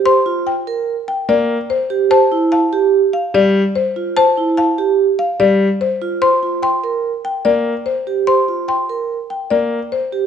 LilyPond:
<<
  \new Staff \with { instrumentName = "Xylophone" } { \time 5/4 \key g \dorian \tempo 4 = 146 c'''8 r2 g''8 r2 | a''8 r8 a''8 r4 f''8 r2 | a''8 r8 a''8 r4 f''8 r2 | c'''8 r8 c'''8 r4 g''8 r2 |
c'''8 r8 c'''8 r4 g''8 r2 | }
  \new Staff \with { instrumentName = "Marimba" } { \time 5/4 \key g \dorian c''8 r8 g''8 r4. d''8 r8 c''8 r8 | c''8 r8 f''8 r4. d''8 r8 c''8 r8 | c''8 r8 f''8 r4. d''8 r8 c''8 r8 | c''8 r8 g''8 r4. d''8 r8 c''8 r8 |
c''8 r8 g''8 r4. d''8 r8 c''8 r8 | }
  \new Staff \with { instrumentName = "Vibraphone" } { \time 5/4 \key g \dorian r8 f'8 r8 bes'8 r2 r8 g'8 | r8 e'8 r8 g'8 r2 r8 f'8 | r8 e'8 r8 g'8 r2 r8 f'8 | r8 f'8 r8 bes'8 r2 r8 g'8 |
r8 f'8 r8 bes'8 r2 r8 g'8 | }
  \new Staff \with { instrumentName = "Grand piano" } { \time 5/4 \key g \dorian r2. bes8 r4. | r2. g8 r4. | r2. g8 r4. | r2. bes8 r4. |
r2. bes8 r4. | }
>>